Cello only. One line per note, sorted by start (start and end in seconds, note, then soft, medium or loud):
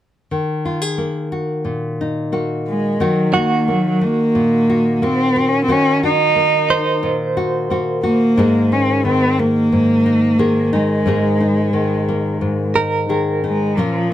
2.69 3.04 G#3 medium
3.03 3.37 F#3 medium
3.36 3.72 A#3 medium
3.70 4.05 F#3 medium
4.04 4.97 A#3 medium
4.97 5.06 A#3 soft
5.04 5.51 C4 medium
5.49 5.64 C#4 medium
5.64 5.74 C4 medium
5.73 6.04 C#4 medium
6.05 7.01 D#4 medium
8.04 8.74 A#3 medium
8.73 9.06 C#4 medium
9.07 9.42 C4 medium
9.40 10.73 A#3 medium
10.75 12.72 G#3 medium
13.46 13.81 G#3 medium
13.79 14.13 F3 medium